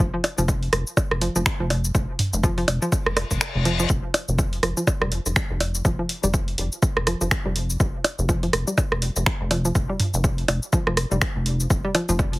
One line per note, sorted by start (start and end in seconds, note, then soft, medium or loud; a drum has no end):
0.00 0.11 F1 loud
0.00 kick loud
0.00 shaker soft
0.14 0.16 F3 medium
0.24 open hi-hat medium
0.24 percussion blips medium
0.38 0.69 F1 loud
0.38 0.41 F3 medium
0.38 shaker medium
0.48 kick loud
0.48 shaker soft
0.63 open hi-hat soft
0.73 0.84 F1 medium
0.73 cross-stick medium
0.73 open hi-hat medium
0.87 shaker medium
0.97 kick loud
0.97 percussion blips medium
0.97 shaker soft
1.11 1.29 F1 medium
1.11 cross-stick medium
1.21 1.28 F3 medium
1.21 open hi-hat medium
1.36 1.44 F1 loud
1.36 1.38 F3 medium
1.36 shaker medium
1.46 finger snap loud
1.46 kick loud
1.46 shaker soft
1.60 1.91 F1 loud
1.60 1.63 F3 medium
1.70 open hi-hat medium
1.70 percussion blips soft
1.84 shaker medium
1.95 2.06 F1 loud
1.95 kick loud
1.95 shaker soft
2.19 mid tom medium
2.19 open hi-hat medium
2.33 2.64 F1 loud
2.33 shaker medium
2.43 2.49 F3 medium
2.43 kick loud
2.43 shaker soft
2.58 2.60 F3 medium
2.58 open hi-hat soft
2.68 2.79 F1 medium
2.68 open hi-hat medium
2.68 percussion blips medium
2.82 2.85 F3 medium
2.82 shaker medium
2.92 kick loud
2.92 reverse cymbal medium
2.92 shaker soft
3.06 3.24 F1 medium
3.06 cross-stick medium
3.17 cross-stick medium
3.17 open hi-hat medium
3.17 percussion blips medium
3.31 3.39 F1 medium
3.31 kick medium
3.31 open hi-hat soft
3.31 shaker medium
3.41 finger snap loud
3.41 shaker soft
3.55 3.86 F1 loud
3.65 3.71 F3 medium
3.65 open hi-hat medium
3.80 3.82 F3 medium
3.80 shaker medium
3.90 4.01 F1 loud
3.90 kick loud
3.90 shaker soft
4.14 open hi-hat medium
4.14 percussion blips medium
4.28 4.59 F1 loud
4.28 shaker medium
4.39 kick loud
4.39 shaker soft
4.53 open hi-hat soft
4.63 4.74 F1 medium
4.63 4.69 F3 medium
4.63 cross-stick medium
4.63 open hi-hat medium
4.77 4.80 F3 medium
4.77 shaker medium
4.87 kick loud
4.87 percussion blips medium
4.87 shaker soft
5.02 5.19 F1 medium
5.02 5.08 G3 medium
5.02 cross-stick medium
5.12 open hi-hat medium
5.26 5.34 F1 medium
5.26 shaker medium
5.36 finger snap loud
5.36 kick loud
5.36 shaker soft
5.50 5.81 F1 loud
5.60 open hi-hat medium
5.60 percussion blips medium
5.75 shaker medium
5.85 5.96 F1 loud
5.85 5.91 F3 medium
5.85 kick loud
5.85 shaker soft
5.99 6.02 F3 medium
6.09 open hi-hat medium
6.24 6.54 F1 loud
6.24 6.30 G3 medium
6.24 shaker medium
6.34 kick loud
6.34 shaker soft
6.48 open hi-hat soft
6.58 6.69 F1 medium
6.58 open hi-hat loud
6.72 shaker medium
6.82 kick loud
6.82 shaker soft
6.97 7.15 F1 medium
6.97 cross-stick medium
7.07 7.13 F3 medium
7.07 cross-stick medium
7.07 open hi-hat loud
7.21 7.29 F1 loud
7.21 7.24 F3 medium
7.21 shaker medium
7.31 finger snap loud
7.31 kick loud
7.31 shaker soft
7.46 7.76 F1 loud
7.46 7.52 G3 medium
7.56 open hi-hat loud
7.70 shaker medium
7.80 7.91 F1 loud
7.80 kick loud
7.80 shaker soft
8.04 open hi-hat loud
8.04 percussion blips medium
8.19 8.50 F1 loud
8.19 shaker medium
8.29 8.35 F3 medium
8.29 kick loud
8.29 shaker soft
8.43 8.46 F3 medium
8.43 open hi-hat soft
8.53 8.64 F1 medium
8.53 cross-stick medium
8.53 open hi-hat loud
8.67 8.74 G3 medium
8.67 shaker medium
8.78 kick loud
8.78 percussion blips medium
8.78 shaker soft
8.92 9.10 F1 medium
8.92 cross-stick medium
9.02 open hi-hat loud
9.16 9.24 F1 loud
9.16 shaker medium
9.26 finger snap loud
9.26 kick loud
9.26 shaker soft
9.41 9.71 F1 loud
9.51 9.57 F3 medium
9.51 open hi-hat loud
9.51 percussion blips medium
9.65 9.68 F3 medium
9.65 shaker medium
9.75 9.86 F1 loud
9.75 kick loud
9.75 shaker soft
9.89 9.96 G3 medium
10.00 mid tom medium
10.00 open hi-hat loud
10.14 10.45 F1 loud
10.14 shaker medium
10.24 kick loud
10.24 shaker soft
10.38 open hi-hat soft
10.48 10.59 F1 medium
10.48 open hi-hat medium
10.48 percussion blips medium
10.63 shaker medium
10.73 10.79 F3 medium
10.73 kick loud
10.73 shaker soft
10.87 11.05 F1 medium
10.87 10.90 F3 medium
10.87 cross-stick medium
10.97 cross-stick medium
10.97 open hi-hat loud
11.11 11.19 F1 medium
11.11 11.18 G3 medium
11.11 shaker medium
11.22 finger snap loud
11.22 kick loud
11.22 shaker soft
11.36 11.67 F1 loud
11.46 open hi-hat medium
11.60 shaker medium
11.70 11.81 F1 loud
11.70 kick loud
11.70 shaker soft
11.85 11.91 G3 medium
11.95 12.01 F3 medium
11.95 open hi-hat loud
11.95 percussion blips medium
12.09 12.39 F1 loud
12.09 12.12 F3 medium
12.09 shaker medium
12.19 kick loud
12.19 shaker soft
12.33 open hi-hat soft